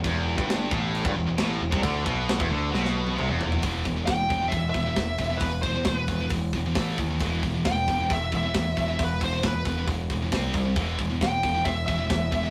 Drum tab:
CC |x---x---x---x---|x---x-----------|----------------|----------------|
HH |----------------|----------------|o-o-o-o-o-o-o-o-|o-o-o-o-o-o-o-o-|
SD |----o-------o---|----o---oo------|----o-------o---|----o-------o---|
T1 |----------------|-----------o----|----------------|----------------|
T2 |----------------|------------o---|----------------|----------------|
FT |----------------|--------------oo|----------------|----------------|
BD |o--o--o--o-----o|o-o--o----------|o-o-o-o-o-o-o-o-|o-o-o-o-o-o-o-o-|

CC |----------------|----------------|----------------|
HH |o-o-o-o-o-o-o-o-|o-o-o-o-o-o-o-o-|o-o-o-o-o-o-o-o-|
SD |----o-------o---|----o-------o---|----o-------o---|
T1 |----------------|----------------|----------------|
T2 |----------------|----------------|----------------|
FT |----------------|----------------|----------------|
BD |o-o-o-o-o-o-o-o-|o-o-o-o-o-o-o-o-|o-o-o-o-o-o-o-o-|